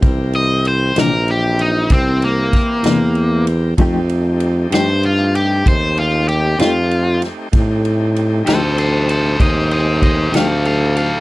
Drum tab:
RD |xxxxxxxxxxxx|xxxxxxxxxxxx|xxxxxxxxxxxx|
SD |---o----oo--|---o-----o-o|---o-----o--|
BD |o-----o-o---|o-----o-----|o-----o-o---|